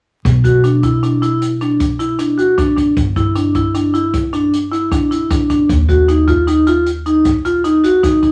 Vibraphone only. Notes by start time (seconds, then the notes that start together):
0.44 F#4
0.64 D4
0.84 E4
1.03 D4
1.22 E4
1.61 D4
1.99 E4
2.19 D4
2.38 F#4
2.58 D4
2.76 D4
3.16 E4
3.35 D4
3.55 E4
3.75 D4
3.94 E4
4.33 D4
4.72 E4
4.92 D4
5.11 E4
5.31 D4
5.50 D4
5.89 F#4
6.08 D#4
6.28 F4
6.47 D#4
6.67 F4
7.06 D#4
7.45 F4
7.64 D#4
7.84 F#4
8.03 D#4
8.23 D#4